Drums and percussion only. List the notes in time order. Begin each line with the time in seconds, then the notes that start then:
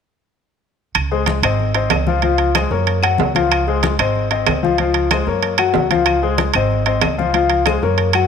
0.95 high conga, high timbale, claves
1.12 high conga
1.26 high conga, high timbale, low timbale
1.43 high conga, high timbale, claves
1.59 high conga
1.75 high conga, high timbale
1.90 high conga, high timbale, low timbale, claves
2.07 high conga
2.22 high conga, high timbale
2.38 high conga, high timbale
2.55 high conga, high timbale, low timbale, claves
2.71 high conga
2.87 high conga, high timbale
3.03 high conga, high timbale, claves
3.18 high conga, low timbale
3.35 high conga, high timbale
3.51 high conga, high timbale, claves
3.67 high conga
3.83 high conga, high timbale, low timbale
3.99 high conga, high timbale, claves
4.16 high conga
4.31 high conga, high timbale
4.46 high conga, high timbale, low timbale, claves
4.65 high conga
4.78 high conga, high timbale
4.94 high conga, high timbale
5.11 high conga, high timbale, low timbale, claves
5.27 high conga
5.42 high conga, high timbale
5.58 high conga, high timbale, claves
5.74 high conga, low timbale
5.91 high conga, high timbale
6.06 high conga, high timbale, claves
6.23 high conga
6.38 high conga, high timbale, low timbale
6.54 high conga, high timbale, claves
6.71 high conga
6.86 high conga, high timbale
7.01 high conga, high timbale, low timbale, claves
7.19 high conga
7.34 high conga, high timbale
7.50 high conga, high timbale
7.66 high conga, high timbale, low timbale, claves
7.83 high conga
7.98 high conga, high timbale
8.13 high conga, high timbale, claves